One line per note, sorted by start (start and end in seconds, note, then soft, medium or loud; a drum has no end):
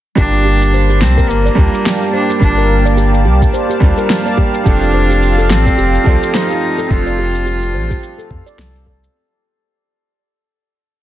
0.15 1.03 G1 medium
0.15 1.54 G3 medium
0.15 1.54 A#3 medium
0.15 4.66 A#3 medium
0.15 1.55 D4 medium
0.15 1.04 D4 loud
0.15 1.55 F4 medium
0.15 0.33 G4 loud
0.15 1.55 A5 loud
0.15 kick loud
0.15 shaker medium
0.34 5.52 G4 medium
0.34 shaker soft
0.43 0.72 G4 medium
0.43 9.14 D5 medium
0.62 shaker medium
0.74 0.83 C5 medium
0.74 shaker soft
0.90 1.01 G4 medium
0.90 shaker soft
1.01 1.21 C2 loud
1.01 1.32 C4 loud
1.01 snare medium
1.18 1.44 A#4 loud
1.18 9.15 A5 medium
1.18 kick medium
1.18 shaker medium
1.30 1.49 G1 medium
1.30 2.14 A#3 medium
1.30 shaker medium
1.46 1.52 D5 medium
1.46 shaker soft
1.55 1.68 D2 loud
1.55 2.38 G3 loud
1.55 2.38 A#3 medium
1.55 2.39 D4 medium
1.55 2.39 F4 medium
1.55 1.73 G4 medium
1.55 kick loud
1.59 2.40 A5 loud
1.74 shaker medium
1.86 2.12 G4 medium
1.86 snare medium
1.86 shaker medium
2.02 shaker soft
2.13 2.40 D4 medium
2.13 2.23 C5 medium
2.21 9.15 F5 medium
2.30 2.41 G4 medium
2.30 shaker medium
2.39 3.27 G1 medium
2.39 3.78 G3 medium
2.39 3.78 A#3 medium
2.39 3.79 D4 medium
2.39 2.94 D4 medium
2.39 3.79 F4 medium
2.39 kick loud
2.39 shaker medium
2.44 3.80 A5 medium
2.58 2.84 A#4 medium
2.58 shaker soft
2.86 2.92 D5 medium
2.86 shaker medium
2.97 3.13 G4 medium
2.97 shaker medium
3.14 shaker soft
3.25 3.45 C2 loud
3.25 3.52 G4 medium
3.42 kick loud
3.42 shaker medium
3.53 3.63 C5 medium
3.53 shaker medium
3.69 3.81 G4 medium
3.69 shaker soft
3.80 3.92 D2 medium
3.80 4.62 G3 loud
3.80 4.63 A#3 medium
3.80 4.63 D4 medium
3.80 4.64 F4 medium
3.80 4.64 A5 loud
3.80 kick loud
3.98 4.24 A#4 medium
3.98 shaker medium
4.10 snare medium
4.10 shaker medium
4.26 4.33 D5 medium
4.26 shaker soft
4.37 4.53 G4 medium
4.37 kick medium
4.54 shaker medium
4.64 5.52 F1 loud
4.64 6.02 F3 medium
4.64 6.03 A3 medium
4.64 6.03 C4 medium
4.64 9.14 C4 medium
4.64 6.04 D4 medium
4.64 5.47 D4 medium
4.64 4.93 G4 loud
4.64 6.04 A4 medium
4.64 kick loud
4.64 shaker medium
4.77 9.14 F4 loud
4.83 shaker soft
4.94 5.03 C5 medium
5.10 5.21 G4 medium
5.10 shaker medium
5.23 shaker medium
5.38 5.65 A4 medium
5.38 shaker soft
5.50 5.70 A1 medium
5.50 6.37 C4 loud
5.50 snare medium
5.66 5.73 D5 medium
5.66 kick loud
5.66 shaker medium
5.78 5.98 F1 loud
5.78 5.93 G4 loud
5.78 shaker medium
5.95 shaker soft
6.04 6.17 C2 loud
6.04 6.86 F3 loud
6.04 6.87 A3 medium
6.04 6.87 C4 medium
6.04 6.33 G4 medium
6.04 6.88 A4 loud
6.04 6.88 D5 medium
6.04 kick loud
6.23 shaker medium
6.34 6.92 D#4 loud
6.34 6.43 C5 medium
6.34 snare medium
6.34 shaker medium
6.51 6.62 G4 medium
6.51 shaker soft
6.78 7.05 A4 medium
6.78 shaker medium
6.88 7.75 F1 loud
6.88 8.27 F3 medium
6.88 8.27 A3 medium
6.88 8.28 C4 medium
6.88 8.28 D4 medium
6.88 8.59 F4 loud
6.88 kick loud
6.88 shaker medium
6.92 8.29 A4 loud
7.06 7.13 D5 medium
7.06 shaker soft
7.18 7.34 G4 medium
7.35 shaker medium
7.46 7.73 G4 medium
7.46 shaker medium
7.63 shaker soft
7.74 7.94 A1 medium
7.74 7.83 C5 medium
7.90 8.02 G4 medium
7.90 kick loud
7.90 shaker medium
8.03 shaker medium
8.18 8.29 A4 medium
8.18 shaker soft
8.30 8.41 F2 medium
8.30 kick loud
8.46 8.58 D5 loud
8.46 shaker medium
8.58 9.08 C2 medium
8.58 8.73 A4 medium
8.58 snare medium
8.58 shaker medium
8.75 shaker soft
8.86 8.96 A4 medium
8.86 kick medium
9.04 shaker medium